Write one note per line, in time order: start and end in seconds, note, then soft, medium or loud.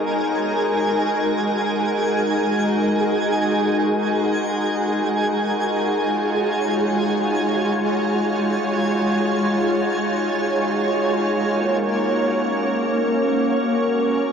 0.00 11.18 G#3 medium
0.00 12.48 D#4 medium
0.00 14.32 F#4 medium
0.00 11.20 G#4 medium
0.00 5.82 A#4 medium
0.00 0.63 C#5 medium
0.00 11.20 G#5 medium
5.25 11.18 F4 medium
5.68 14.32 C#5 medium
11.20 14.32 A#3 medium
11.72 14.32 C#4 medium